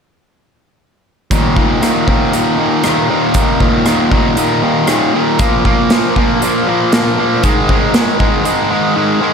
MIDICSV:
0, 0, Header, 1, 3, 480
1, 0, Start_track
1, 0, Tempo, 509771
1, 1242, Time_signature, 4, 2, 24, 8
1, 8789, End_track
2, 0, Start_track
2, 0, Title_t, "Distorted electric guitar"
2, 0, Program_c, 0, 30
2, 1237, Note_on_c, 0, 39, 67
2, 1244, Note_on_c, 0, 46, 76
2, 1244, Note_on_c, 0, 51, 73
2, 1468, Note_off_c, 0, 46, 0
2, 1472, Note_off_c, 0, 39, 0
2, 1476, Note_on_c, 0, 39, 58
2, 1479, Note_off_c, 0, 51, 0
2, 1479, Note_on_c, 0, 46, 69
2, 1483, Note_on_c, 0, 51, 63
2, 1701, Note_off_c, 0, 46, 0
2, 1705, Note_off_c, 0, 39, 0
2, 1709, Note_on_c, 0, 39, 61
2, 1713, Note_on_c, 0, 46, 66
2, 1716, Note_off_c, 0, 51, 0
2, 1719, Note_on_c, 0, 51, 74
2, 1945, Note_off_c, 0, 39, 0
2, 1948, Note_on_c, 0, 39, 77
2, 1950, Note_off_c, 0, 46, 0
2, 1959, Note_off_c, 0, 51, 0
2, 1961, Note_on_c, 0, 46, 85
2, 1963, Note_on_c, 0, 51, 90
2, 2182, Note_off_c, 0, 39, 0
2, 2187, Note_off_c, 0, 46, 0
2, 2193, Note_on_c, 0, 39, 63
2, 2194, Note_off_c, 0, 51, 0
2, 2198, Note_on_c, 0, 46, 69
2, 2205, Note_on_c, 0, 51, 81
2, 2423, Note_off_c, 0, 39, 0
2, 2432, Note_off_c, 0, 46, 0
2, 2432, Note_off_c, 0, 51, 0
2, 2435, Note_on_c, 0, 39, 60
2, 2443, Note_on_c, 0, 46, 55
2, 2443, Note_on_c, 0, 51, 63
2, 2667, Note_off_c, 0, 39, 0
2, 2673, Note_off_c, 0, 46, 0
2, 2677, Note_off_c, 0, 51, 0
2, 2678, Note_on_c, 0, 39, 69
2, 2685, Note_on_c, 0, 46, 74
2, 2688, Note_on_c, 0, 51, 96
2, 2902, Note_off_c, 0, 39, 0
2, 2909, Note_off_c, 0, 46, 0
2, 2913, Note_on_c, 0, 39, 65
2, 2916, Note_off_c, 0, 51, 0
2, 2920, Note_on_c, 0, 46, 66
2, 2927, Note_on_c, 0, 51, 81
2, 3149, Note_off_c, 0, 39, 0
2, 3156, Note_off_c, 0, 46, 0
2, 3157, Note_off_c, 0, 51, 0
2, 3160, Note_on_c, 0, 39, 74
2, 3167, Note_on_c, 0, 46, 63
2, 3168, Note_on_c, 0, 51, 69
2, 3379, Note_off_c, 0, 39, 0
2, 3382, Note_off_c, 0, 46, 0
2, 3390, Note_off_c, 0, 51, 0
2, 3390, Note_on_c, 0, 39, 55
2, 3394, Note_on_c, 0, 46, 56
2, 3401, Note_on_c, 0, 51, 61
2, 3629, Note_off_c, 0, 39, 0
2, 3633, Note_off_c, 0, 46, 0
2, 3634, Note_off_c, 0, 51, 0
2, 3640, Note_on_c, 0, 39, 69
2, 3644, Note_on_c, 0, 46, 76
2, 3646, Note_on_c, 0, 51, 78
2, 3865, Note_off_c, 0, 39, 0
2, 3869, Note_off_c, 0, 46, 0
2, 3873, Note_off_c, 0, 51, 0
2, 3877, Note_on_c, 0, 39, 69
2, 3880, Note_on_c, 0, 46, 83
2, 3885, Note_on_c, 0, 51, 87
2, 4107, Note_off_c, 0, 39, 0
2, 4114, Note_off_c, 0, 46, 0
2, 4119, Note_off_c, 0, 51, 0
2, 4119, Note_on_c, 0, 39, 67
2, 4125, Note_on_c, 0, 46, 74
2, 4130, Note_on_c, 0, 51, 78
2, 4345, Note_off_c, 0, 39, 0
2, 4345, Note_off_c, 0, 46, 0
2, 4352, Note_off_c, 0, 51, 0
2, 4356, Note_on_c, 0, 39, 54
2, 4357, Note_on_c, 0, 46, 63
2, 4363, Note_on_c, 0, 51, 63
2, 4583, Note_off_c, 0, 39, 0
2, 4585, Note_off_c, 0, 46, 0
2, 4593, Note_off_c, 0, 51, 0
2, 4595, Note_on_c, 0, 39, 75
2, 4597, Note_on_c, 0, 46, 81
2, 4604, Note_on_c, 0, 51, 82
2, 4827, Note_off_c, 0, 39, 0
2, 4832, Note_off_c, 0, 46, 0
2, 4836, Note_off_c, 0, 51, 0
2, 4838, Note_on_c, 0, 39, 68
2, 4843, Note_on_c, 0, 46, 75
2, 4848, Note_on_c, 0, 51, 85
2, 5067, Note_off_c, 0, 39, 0
2, 5069, Note_off_c, 0, 46, 0
2, 5071, Note_off_c, 0, 51, 0
2, 5085, Note_on_c, 0, 46, 75
2, 5089, Note_on_c, 0, 53, 72
2, 5096, Note_on_c, 0, 58, 73
2, 5308, Note_off_c, 0, 46, 0
2, 5316, Note_off_c, 0, 58, 0
2, 5317, Note_off_c, 0, 53, 0
2, 5319, Note_on_c, 0, 46, 55
2, 5327, Note_on_c, 0, 58, 78
2, 5329, Note_on_c, 0, 53, 60
2, 5552, Note_off_c, 0, 46, 0
2, 5561, Note_off_c, 0, 53, 0
2, 5563, Note_on_c, 0, 46, 76
2, 5565, Note_off_c, 0, 58, 0
2, 5572, Note_on_c, 0, 53, 83
2, 5576, Note_on_c, 0, 58, 69
2, 5797, Note_off_c, 0, 46, 0
2, 5799, Note_off_c, 0, 53, 0
2, 5805, Note_off_c, 0, 58, 0
2, 5809, Note_on_c, 0, 46, 79
2, 5810, Note_on_c, 0, 53, 86
2, 5817, Note_on_c, 0, 58, 93
2, 6036, Note_off_c, 0, 46, 0
2, 6041, Note_off_c, 0, 53, 0
2, 6044, Note_off_c, 0, 58, 0
2, 6047, Note_on_c, 0, 46, 73
2, 6052, Note_on_c, 0, 53, 77
2, 6055, Note_on_c, 0, 58, 77
2, 6274, Note_off_c, 0, 46, 0
2, 6279, Note_off_c, 0, 53, 0
2, 6284, Note_off_c, 0, 58, 0
2, 6285, Note_on_c, 0, 46, 68
2, 6290, Note_on_c, 0, 53, 70
2, 6296, Note_on_c, 0, 58, 65
2, 6512, Note_off_c, 0, 46, 0
2, 6518, Note_off_c, 0, 53, 0
2, 6523, Note_off_c, 0, 58, 0
2, 6524, Note_on_c, 0, 46, 78
2, 6529, Note_on_c, 0, 53, 77
2, 6534, Note_on_c, 0, 58, 89
2, 6752, Note_off_c, 0, 46, 0
2, 6761, Note_off_c, 0, 53, 0
2, 6763, Note_off_c, 0, 58, 0
2, 6764, Note_on_c, 0, 46, 71
2, 6772, Note_on_c, 0, 53, 84
2, 6775, Note_on_c, 0, 58, 84
2, 6989, Note_off_c, 0, 46, 0
2, 6994, Note_off_c, 0, 53, 0
2, 6995, Note_off_c, 0, 58, 0
2, 7002, Note_on_c, 0, 44, 69
2, 7005, Note_on_c, 0, 51, 80
2, 7008, Note_on_c, 0, 56, 77
2, 7236, Note_off_c, 0, 44, 0
2, 7242, Note_off_c, 0, 51, 0
2, 7247, Note_on_c, 0, 44, 63
2, 7248, Note_off_c, 0, 56, 0
2, 7253, Note_on_c, 0, 51, 68
2, 7260, Note_on_c, 0, 56, 73
2, 7474, Note_off_c, 0, 44, 0
2, 7478, Note_off_c, 0, 51, 0
2, 7483, Note_off_c, 0, 56, 0
2, 7485, Note_on_c, 0, 44, 69
2, 7490, Note_on_c, 0, 51, 79
2, 7495, Note_on_c, 0, 56, 72
2, 7710, Note_off_c, 0, 44, 0
2, 7716, Note_off_c, 0, 51, 0
2, 7721, Note_off_c, 0, 56, 0
2, 7721, Note_on_c, 0, 44, 86
2, 7728, Note_on_c, 0, 51, 88
2, 7732, Note_on_c, 0, 56, 82
2, 7942, Note_off_c, 0, 44, 0
2, 7949, Note_off_c, 0, 51, 0
2, 7953, Note_off_c, 0, 56, 0
2, 7953, Note_on_c, 0, 44, 75
2, 7960, Note_on_c, 0, 51, 83
2, 7964, Note_on_c, 0, 56, 83
2, 8184, Note_off_c, 0, 44, 0
2, 8191, Note_off_c, 0, 51, 0
2, 8194, Note_off_c, 0, 56, 0
2, 8195, Note_on_c, 0, 44, 63
2, 8203, Note_on_c, 0, 51, 60
2, 8206, Note_on_c, 0, 56, 67
2, 8427, Note_off_c, 0, 44, 0
2, 8430, Note_off_c, 0, 51, 0
2, 8437, Note_off_c, 0, 56, 0
2, 8438, Note_on_c, 0, 44, 82
2, 8441, Note_on_c, 0, 51, 86
2, 8448, Note_on_c, 0, 56, 90
2, 8662, Note_off_c, 0, 44, 0
2, 8666, Note_off_c, 0, 51, 0
2, 8673, Note_off_c, 0, 56, 0
2, 8674, Note_on_c, 0, 44, 67
2, 8677, Note_on_c, 0, 51, 80
2, 8684, Note_on_c, 0, 56, 86
2, 8789, Note_off_c, 0, 44, 0
2, 8789, Note_off_c, 0, 51, 0
2, 8789, Note_off_c, 0, 56, 0
2, 8789, End_track
3, 0, Start_track
3, 0, Title_t, "Drums"
3, 1233, Note_on_c, 9, 36, 94
3, 1234, Note_on_c, 9, 42, 54
3, 1327, Note_off_c, 9, 36, 0
3, 1328, Note_off_c, 9, 42, 0
3, 1474, Note_on_c, 9, 36, 73
3, 1568, Note_off_c, 9, 36, 0
3, 1719, Note_on_c, 9, 42, 46
3, 1723, Note_on_c, 9, 37, 81
3, 1813, Note_off_c, 9, 42, 0
3, 1817, Note_off_c, 9, 37, 0
3, 1955, Note_on_c, 9, 36, 71
3, 2050, Note_off_c, 9, 36, 0
3, 2198, Note_on_c, 9, 42, 45
3, 2292, Note_off_c, 9, 42, 0
3, 2670, Note_on_c, 9, 42, 45
3, 2674, Note_on_c, 9, 37, 81
3, 2764, Note_off_c, 9, 42, 0
3, 2768, Note_off_c, 9, 37, 0
3, 3147, Note_on_c, 9, 42, 51
3, 3153, Note_on_c, 9, 36, 89
3, 3241, Note_off_c, 9, 42, 0
3, 3247, Note_off_c, 9, 36, 0
3, 3394, Note_on_c, 9, 36, 67
3, 3488, Note_off_c, 9, 36, 0
3, 3631, Note_on_c, 9, 42, 46
3, 3635, Note_on_c, 9, 37, 88
3, 3725, Note_off_c, 9, 42, 0
3, 3729, Note_off_c, 9, 37, 0
3, 3875, Note_on_c, 9, 36, 69
3, 3969, Note_off_c, 9, 36, 0
3, 4114, Note_on_c, 9, 42, 44
3, 4208, Note_off_c, 9, 42, 0
3, 4589, Note_on_c, 9, 42, 45
3, 4593, Note_on_c, 9, 37, 86
3, 4683, Note_off_c, 9, 42, 0
3, 4687, Note_off_c, 9, 37, 0
3, 5075, Note_on_c, 9, 42, 52
3, 5080, Note_on_c, 9, 36, 96
3, 5169, Note_off_c, 9, 42, 0
3, 5174, Note_off_c, 9, 36, 0
3, 5320, Note_on_c, 9, 36, 70
3, 5415, Note_off_c, 9, 36, 0
3, 5557, Note_on_c, 9, 42, 47
3, 5561, Note_on_c, 9, 38, 75
3, 5651, Note_off_c, 9, 42, 0
3, 5655, Note_off_c, 9, 38, 0
3, 5802, Note_on_c, 9, 36, 64
3, 5897, Note_off_c, 9, 36, 0
3, 6045, Note_on_c, 9, 42, 50
3, 6139, Note_off_c, 9, 42, 0
3, 6520, Note_on_c, 9, 42, 52
3, 6524, Note_on_c, 9, 38, 85
3, 6614, Note_off_c, 9, 42, 0
3, 6618, Note_off_c, 9, 38, 0
3, 6999, Note_on_c, 9, 42, 52
3, 7003, Note_on_c, 9, 36, 90
3, 7093, Note_off_c, 9, 42, 0
3, 7097, Note_off_c, 9, 36, 0
3, 7242, Note_on_c, 9, 36, 71
3, 7336, Note_off_c, 9, 36, 0
3, 7477, Note_on_c, 9, 42, 47
3, 7481, Note_on_c, 9, 38, 83
3, 7572, Note_off_c, 9, 42, 0
3, 7575, Note_off_c, 9, 38, 0
3, 7722, Note_on_c, 9, 36, 75
3, 7816, Note_off_c, 9, 36, 0
3, 7960, Note_on_c, 9, 42, 51
3, 8054, Note_off_c, 9, 42, 0
3, 8789, End_track
0, 0, End_of_file